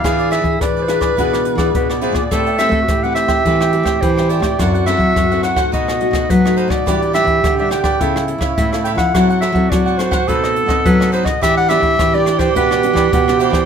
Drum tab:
HH |xxxxxxxxxxxxx-xx|xxxxx-xxx-xxx-x-|xxxxxxxxxxxxx-xx|xxxxx-xxx-xxx-x-|
SD |r-r-r-rr-r-r-r-r|r-r-r-rr-r-r-r-r|r-r-r-rr-r-r-r-r|r-r-r-rr-r-r-r-r|
BD |o--oo--oo--oo--o|o--oo--oo--oo--o|o--oo--oo--oo--o|o--oo--oo--oo--o|

HH |xxxxxxxxxxxxx-xx|xxxxx-xxx-xxx-x-|
SD |r-r-r-rr-r-r-r-r|r-r-r-rr-r-r-r-r|
BD |o--oo--oo--oo--o|o--oo--oo--oo--o|